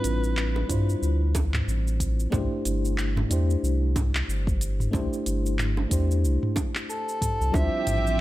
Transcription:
0.00 0.67 G3 medium
0.00 0.67 C4 medium
0.00 0.69 D4 medium
0.00 0.70 E4 medium
0.00 0.70 F4 medium
0.00 0.70 B4 medium
0.00 0.71 C5 medium
0.04 0.64 A1 medium
0.04 closed hi-hat medium
0.04 shaker medium
0.24 shaker soft
0.37 clap medium
0.37 shaker soft
0.56 high bongo medium
0.67 0.96 G2 medium
0.67 2.28 G3 medium
0.67 2.29 D4 medium
0.67 2.29 E4 medium
0.67 2.30 F4 medium
0.67 2.30 C5 medium
0.67 kick medium
0.67 closed hi-hat medium
0.67 mid tom medium
0.67 shaker medium
0.90 shaker soft
1.02 1.62 D2 medium
1.02 shaker soft
1.35 kick medium
1.35 closed hi-hat medium
1.35 high bongo loud
1.35 shaker medium
1.54 clap medium
1.54 mid tom medium
1.54 shaker soft
1.68 2.28 A1 medium
1.68 shaker soft
1.88 shaker soft
2.00 kick medium
2.00 closed hi-hat medium
2.00 shaker medium
2.20 shaker soft
2.30 2.47 C2 loud
2.30 3.26 A3 medium
2.30 3.26 D4 medium
2.30 3.27 E4 medium
2.30 3.27 G4 medium
2.30 3.28 C5 medium
2.30 kick loud
2.30 mid tom medium
2.30 high bongo medium
2.30 shaker soft
2.65 3.25 G1 medium
2.65 closed hi-hat medium
2.65 shaker medium
2.85 shaker soft
2.98 clap medium
2.98 shaker soft
3.17 mid tom medium
3.17 high bongo medium
3.29 3.57 E2 medium
3.29 4.90 A3 medium
3.29 4.90 D4 medium
3.29 4.91 E4 medium
3.29 4.91 G4 medium
3.29 4.91 C5 medium
3.29 closed hi-hat medium
3.29 shaker medium
3.50 shaker soft
3.63 4.23 C2 medium
3.63 shaker soft
3.96 kick loud
3.96 closed hi-hat medium
3.96 mid tom medium
3.96 high bongo medium
3.96 shaker medium
4.15 clap medium
4.15 shaker soft
4.28 4.88 G1 medium
4.28 shaker soft
4.47 kick loud
4.47 shaker soft
4.61 closed hi-hat medium
4.61 shaker medium
4.80 mid tom medium
4.80 shaker soft
4.91 5.08 C2 medium
4.91 5.87 A3 medium
4.91 5.87 D4 medium
4.91 5.88 E4 medium
4.91 5.88 G4 medium
4.91 5.89 C5 medium
4.91 kick loud
4.91 high bongo medium
4.91 shaker soft
5.13 shaker soft
5.26 5.86 G1 medium
5.26 closed hi-hat medium
5.26 shaker medium
5.46 shaker soft
5.59 clap medium
5.59 mid tom medium
5.59 shaker soft
5.77 high bongo medium
5.89 6.25 E2 medium
5.89 7.50 A3 medium
5.89 7.50 D4 medium
5.89 7.51 E4 medium
5.89 7.51 G4 medium
5.89 7.52 C5 medium
5.89 kick medium
5.89 closed hi-hat medium
5.89 shaker medium
6.11 shaker soft
6.24 6.38 C2 medium
6.24 shaker soft
6.43 mid tom medium
6.56 kick medium
6.56 closed hi-hat medium
6.56 high bongo medium
6.56 shaker medium
6.75 clap medium
6.75 shaker soft
6.90 7.56 A4 medium
6.90 shaker soft
7.09 shaker soft
7.22 kick medium
7.22 closed hi-hat medium
7.22 mid tom medium
7.22 shaker medium
7.41 7.51 C2 medium
7.41 shaker soft
7.52 7.69 D2 medium
7.52 8.21 F3 medium
7.52 8.21 G3 medium
7.52 8.21 C4 medium
7.52 8.21 D4 medium
7.52 8.21 E4 medium
7.52 8.21 F4 medium
7.52 8.21 G4 medium
7.52 8.21 C5 medium
7.52 8.21 E5 loud
7.52 8.21 E5 medium
7.52 kick loud
7.52 high bongo medium
7.52 shaker soft
7.87 8.21 A1 medium
7.87 closed hi-hat medium
7.87 mid tom medium
7.87 shaker medium
8.07 shaker soft

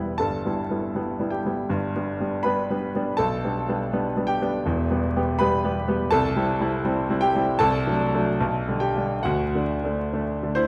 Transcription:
0.00 0.21 E1 medium
0.00 0.21 E2 medium
0.00 0.22 G3 soft
0.00 0.21 B3 soft
0.00 0.21 E4 soft
0.00 0.15 B4 medium
0.00 0.18 B5 medium
0.18 0.43 G1 medium
0.18 0.44 G2 medium
0.18 1.28 A4 medium
0.18 1.31 A5 medium
0.46 0.67 G3 soft
0.46 0.67 B3 soft
0.46 0.68 E4 medium
0.70 0.92 G3 soft
0.70 0.92 B3 soft
0.70 0.93 E4 soft
0.95 1.17 G3 soft
0.95 1.17 B3 soft
0.95 1.17 E4 medium
1.19 1.42 G3 medium
1.19 1.42 B3 soft
1.19 1.42 E4 soft
1.30 1.66 G4 medium
1.30 1.68 G5 medium
1.46 1.68 G3 medium
1.46 1.68 B3 soft
1.46 1.68 E4 medium
1.69 1.93 G1 medium
1.69 1.93 G2 medium
1.95 2.17 G3 soft
1.95 2.17 B3 soft
1.95 2.17 D4 medium
2.20 2.42 G3 soft
2.20 2.42 B3 soft
2.20 2.43 D4 medium
2.43 2.67 G3 medium
2.43 2.67 B3 medium
2.43 2.67 D4 medium
2.43 3.14 B4 medium
2.43 3.18 B5 medium
2.70 2.92 G3 medium
2.70 2.92 B3 medium
2.70 2.92 D4 medium
2.95 3.17 G3 medium
2.95 3.17 B3 medium
2.95 3.17 D4 medium
3.17 3.42 B1 medium
3.17 4.25 A4 medium
3.17 4.28 A5 loud
3.44 3.66 G3 soft
3.44 3.66 B3 soft
3.44 3.66 D4 medium
3.69 3.90 G3 medium
3.69 3.90 B3 medium
3.69 3.91 D4 medium
3.93 4.15 G3 medium
3.93 4.15 B3 medium
3.93 4.15 D4 medium
4.17 4.39 G3 medium
4.17 4.39 B3 medium
4.17 4.39 D4 medium
4.27 4.63 G4 medium
4.27 4.65 G5 medium
4.42 4.64 G3 medium
4.42 4.64 B3 medium
4.42 4.64 D4 medium
4.65 4.90 E1 medium
4.65 4.90 E2 medium
4.90 5.12 G3 soft
4.90 5.13 B3 medium
4.90 5.13 G4 medium
5.16 5.38 G3 medium
5.16 5.38 B3 medium
5.16 5.38 G4 medium
5.39 5.62 G3 medium
5.39 5.62 B3 medium
5.39 5.62 G4 medium
5.39 6.08 B4 medium
5.39 6.11 B5 loud
5.65 5.86 G3 medium
5.65 5.86 B3 medium
5.65 5.86 G4 medium
5.88 6.10 G3 medium
5.88 6.09 B3 medium
5.88 6.10 G4 medium
6.11 6.35 C2 medium
6.11 7.17 A4 medium
6.11 7.21 A5 loud
6.36 6.57 G3 medium
6.36 6.58 C4 medium
6.36 6.58 E4 medium
6.60 6.82 G3 medium
6.60 6.82 C4 medium
6.60 6.82 E4 medium
6.85 7.07 G3 medium
6.85 7.07 C4 medium
6.85 7.07 E4 medium
7.10 7.32 G3 medium
7.10 7.32 C4 medium
7.10 7.33 E4 medium
7.21 7.58 G4 medium
7.21 7.60 G5 loud
7.35 7.58 G3 medium
7.35 7.59 C4 medium
7.35 7.59 E4 medium
7.59 7.86 C2 loud
7.59 8.76 A4 medium
7.59 8.80 A5 loud
7.87 8.11 F#3 medium
7.87 8.11 A3 medium
7.87 8.11 D4 medium
8.14 8.37 F#3 medium
8.14 8.38 A3 medium
8.14 8.38 D4 medium
8.40 8.66 B1 medium
8.68 8.93 D3 medium
8.68 8.93 G3 medium
8.68 8.93 D4 medium
8.80 9.21 G4 medium
8.80 9.24 G5 medium
8.96 9.22 D3 medium
8.96 9.22 G3 medium
8.96 9.22 D4 medium
9.23 9.53 D2 medium
9.23 10.54 F#4 medium
9.23 10.57 F#5 medium
9.55 9.81 D3 soft
9.55 9.81 A3 medium
9.55 9.82 D4 medium
9.84 10.10 D3 medium
9.84 10.11 A3 soft
9.84 10.11 D4 medium
10.13 10.40 D3 medium
10.13 10.40 A3 medium
10.13 10.40 D4 medium
10.43 10.67 D3 soft
10.43 10.67 A3 soft
10.43 10.67 D4 medium
10.55 10.67 E4 medium
10.55 10.67 C5 loud

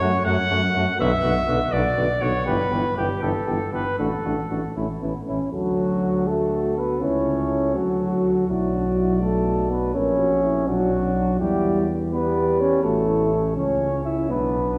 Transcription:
0.00 0.12 F#2 medium
0.00 0.12 F#3 medium
0.00 0.12 A3 medium
0.00 0.12 F#4 medium
0.00 0.22 C#5 loud
0.25 0.37 F#2 medium
0.25 0.38 F#3 medium
0.25 0.36 A3 medium
0.25 0.37 F#4 medium
0.25 0.98 F#5 loud
0.50 0.62 F#2 medium
0.50 0.62 F#3 medium
0.50 0.62 A3 medium
0.50 0.61 F#4 medium
0.74 0.87 F#2 medium
0.74 0.86 F#3 medium
0.74 0.85 A3 medium
0.74 0.86 F#4 medium
0.98 1.12 B1 loud
0.98 1.11 D3 medium
0.98 1.10 B3 medium
0.98 1.09 F#4 medium
0.98 1.73 E5 loud
1.23 1.36 B1 medium
1.23 1.35 D3 medium
1.23 1.35 B3 medium
1.23 1.34 F#4 medium
1.48 1.60 B1 medium
1.48 1.60 D3 medium
1.48 1.59 B3 medium
1.48 1.59 F#4 medium
1.72 1.83 B1 medium
1.72 1.85 D3 medium
1.72 1.84 B3 medium
1.72 1.84 F#4 medium
1.72 2.23 D5 loud
1.97 2.08 B1 medium
1.97 2.09 D3 medium
1.97 2.08 B3 medium
1.97 2.08 F#4 medium
2.20 2.33 B1 medium
2.20 2.33 D3 medium
2.20 2.32 B3 medium
2.20 2.32 F#4 medium
2.20 2.45 C#5 loud
2.45 2.58 G1 medium
2.45 2.58 E3 medium
2.45 2.58 B3 medium
2.45 2.57 G4 medium
2.45 2.95 B4 loud
2.70 2.83 G1 medium
2.70 2.83 E3 medium
2.70 2.83 B3 medium
2.70 2.82 G4 medium
2.96 3.08 G1 medium
2.96 3.09 E3 medium
2.96 3.07 B3 medium
2.96 3.08 G4 medium
2.96 3.22 G4 loud
3.21 3.34 G1 medium
3.21 3.34 E3 medium
3.21 3.33 B3 medium
3.21 3.33 G4 medium
3.21 3.72 A4 medium
3.47 3.59 G1 medium
3.47 3.59 E3 medium
3.47 3.59 B3 medium
3.47 3.58 G4 medium
3.73 3.85 G1 medium
3.73 3.84 E3 medium
3.73 3.84 B3 medium
3.73 3.84 G4 medium
3.73 3.98 B4 loud
3.99 4.11 A1 medium
3.99 4.10 A3 medium
3.99 4.11 D4 medium
3.99 4.11 F#4 medium
3.99 4.74 A4 medium
4.24 4.37 A1 medium
4.24 4.36 A3 medium
4.24 4.37 D4 soft
4.24 4.36 F#4 medium
4.50 4.63 A1 medium
4.50 4.62 A3 medium
4.50 4.62 D4 medium
4.50 4.62 F#4 medium
4.76 4.88 A1 medium
4.76 4.88 A3 medium
4.76 4.88 C#4 medium
4.76 4.88 E4 medium
5.01 5.14 A1 medium
5.01 5.13 B3 medium
5.01 5.14 C#4 medium
5.01 5.14 E4 medium
5.27 5.40 A1 medium
5.27 5.52 C#4 medium
5.27 5.40 C#4 medium
5.27 5.40 E4 medium
5.53 6.98 D2 medium
5.53 6.29 F#3 medium
5.53 6.29 F#4 medium
5.53 6.23 A4 medium
5.53 8.51 A4 medium
6.27 6.77 A3 medium
6.27 7.04 F#4 medium
6.27 6.80 A4 medium
6.78 7.03 B3 medium
6.78 7.02 B4 medium
7.01 7.77 C#2 medium
7.01 7.77 C#4 medium
7.01 7.74 E4 medium
7.01 7.78 C#5 medium
7.75 8.49 D2 medium
7.75 8.47 F#3 medium
7.75 8.47 F#4 medium
7.75 8.49 F#4 medium
8.48 9.91 B1 medium
8.48 9.23 F#3 medium
8.48 8.73 E4 medium
8.48 9.21 F#4 medium
8.48 9.94 D5 medium
8.75 8.85 D4 soft
8.99 9.22 E4 medium
9.21 9.72 A3 medium
9.21 9.96 F#4 medium
9.21 9.69 A4 medium
9.70 9.94 B3 medium
9.70 9.93 B4 medium
9.94 10.69 A#1 medium
9.94 10.69 C#4 medium
9.94 10.18 A#4 medium
9.94 10.65 C#5 medium
9.94 10.70 E5 medium
10.19 10.42 F#4 medium
10.43 10.66 E4 medium
10.67 11.39 B1 medium
10.67 11.39 F#3 medium
10.67 10.90 D4 medium
10.67 11.38 F#4 medium
10.67 11.40 D5 medium
10.92 11.15 C#4 medium
11.15 11.39 D4 medium
11.39 12.80 E2 medium
11.39 11.86 G3 medium
11.39 11.85 E4 medium
11.39 11.85 G4 medium
11.39 11.96 D5 medium
12.12 12.62 B3 medium
12.12 12.80 G4 medium
12.12 12.61 B4 medium
12.12 12.86 D5 medium
12.60 12.83 C#4 medium
12.60 12.85 C#5 medium
12.83 13.58 A1 medium
12.83 13.55 A3 medium
12.83 13.07 F#4 medium
12.83 13.55 A4 medium
12.83 13.56 C#5 medium
13.08 13.31 E4 medium
13.32 14.32 C#4 medium
13.56 14.32 C#2 medium
13.56 14.04 C#4 medium
13.56 14.04 C#5 medium
13.56 14.32 C#5 medium
14.04 14.29 E4 medium
14.04 14.32 E5 medium
14.29 14.78 B1 medium
14.29 14.78 B3 medium
14.29 14.78 D4 medium
14.29 14.78 B4 medium
14.29 14.78 D5 medium

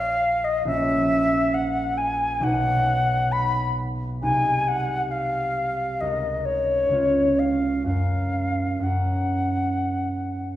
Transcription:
0.00 0.65 A#1 medium
0.00 0.66 C#4 soft
0.00 0.65 F#4 soft
0.00 0.65 C#5 soft
0.00 0.46 F5 loud
0.44 0.66 D#5 medium
0.65 2.46 A#1 soft
0.65 2.47 C#4 soft
0.65 2.42 F#4 soft
0.65 2.46 C#5 soft
0.65 1.55 E5 medium
1.54 1.99 F#5 medium
1.97 2.45 G#5 medium
2.40 4.25 B1 soft
2.40 4.21 D#4 soft
2.40 4.22 F#4 soft
2.40 3.33 F#5 medium
2.46 4.25 B4 soft
3.32 3.76 B5 medium
4.22 6.04 C2 soft
4.22 6.04 D#4 soft
4.22 6.00 F#4 soft
4.22 6.04 G#4 soft
4.22 4.70 G#5 medium
4.68 5.12 F#5 medium
5.11 6.02 F5 medium
6.01 6.89 C#2 soft
6.01 6.90 C#4 soft
6.01 6.95 F#4 soft
6.01 6.95 A#4 soft
6.01 6.47 D#5 medium
6.45 7.40 C#5 medium
6.89 7.89 C#2 soft
6.89 7.85 C#4 soft
6.89 7.90 F4 soft
6.95 7.90 B4 soft
7.39 7.86 F5 medium
7.84 8.79 F#2 soft
7.84 8.81 C#4 soft
7.84 8.81 F#4 soft
7.84 8.85 F5 medium
7.89 8.81 A#4 soft
8.79 10.56 F#2 soft
8.79 10.56 C#4 soft
8.79 10.56 F#5 soft
8.84 10.56 F#4 soft
8.84 10.56 A#4 soft

